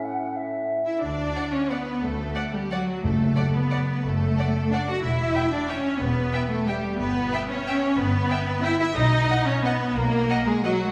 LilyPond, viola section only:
\new Staff \with { instrumentName = "Viola section" } { \time 3/4 \key d \major \tempo 4 = 180 r2 r8 e'8 | d'4. cis'8 b4 | a4. g8 fis4 | a4. b4. |
a2 d'8 fis'8 | e'4. d'8 cis'4 | b4. a8 g4 | b4. cis'4. |
b2 e'8 e'8 | \key b \lydian dis'4. cis'8 b4 | ais4. gis8 fis4 | }